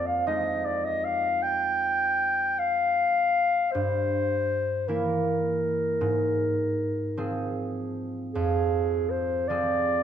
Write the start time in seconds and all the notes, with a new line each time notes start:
Already playing: F2 C4 D#4
0.06 F5
0.27 F3 G#3 D#4 D#5
0.65 D5
0.84 D#5
1.04 F5
1.42 G5
2.59 F5
3.71 G2 C5
4.88 E3 A#3 E4 A#4
6.01 G#2
7.17 F3 C4 G#4
8.33 F2 G#4
9.10 C5
9.48 F3 C4 G#4 D5